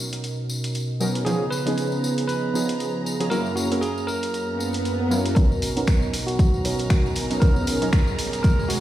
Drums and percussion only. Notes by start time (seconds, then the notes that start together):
0.13 closed hi-hat, tambourine
0.24 closed hi-hat, tambourine
0.49 tambourine
0.64 closed hi-hat, tambourine
0.75 closed hi-hat, tambourine
1.01 tambourine
1.15 closed hi-hat
1.26 closed hi-hat, tambourine
1.52 tambourine
1.67 closed hi-hat, tambourine
1.78 closed hi-hat, tambourine
1.92 tambourine
2.04 tambourine
2.18 closed hi-hat, tambourine
2.29 closed hi-hat, tambourine
2.55 tambourine
2.69 closed hi-hat
2.80 closed hi-hat, tambourine
3.06 tambourine
3.20 closed hi-hat, tambourine
3.31 closed hi-hat, tambourine
3.46 tambourine
3.57 tambourine
3.72 closed hi-hat, tambourine
3.82 closed hi-hat, tambourine
3.98 tambourine
4.08 tambourine
4.23 closed hi-hat, tambourine
4.34 closed hi-hat, tambourine
4.60 tambourine
4.73 closed hi-hat, tambourine
4.85 closed hi-hat, tambourine
5.11 tambourine
5.26 closed hi-hat, tambourine
5.36 kick, closed hi-hat, tambourine
5.52 tambourine
5.62 open hi-hat, tambourine
5.76 closed hi-hat, tambourine
5.87 finger snap, kick, closed hi-hat, tambourine
6.02 tambourine
6.13 open hi-hat, tambourine
6.28 closed hi-hat, tambourine
6.39 kick, closed hi-hat, tambourine
6.54 tambourine
6.65 open hi-hat, tambourine
6.79 closed hi-hat, tambourine
6.90 finger snap, kick, closed hi-hat, tambourine
7.06 tambourine
7.16 open hi-hat, tambourine
7.31 closed hi-hat, tambourine
7.42 kick, closed hi-hat, tambourine
7.56 tambourine
7.67 open hi-hat, tambourine
7.82 closed hi-hat, tambourine
7.93 finger snap, kick, closed hi-hat, tambourine
8.07 tambourine
8.19 open hi-hat, tambourine
8.33 closed hi-hat, tambourine
8.44 kick, closed hi-hat, tambourine
8.59 tambourine
8.70 open hi-hat, tambourine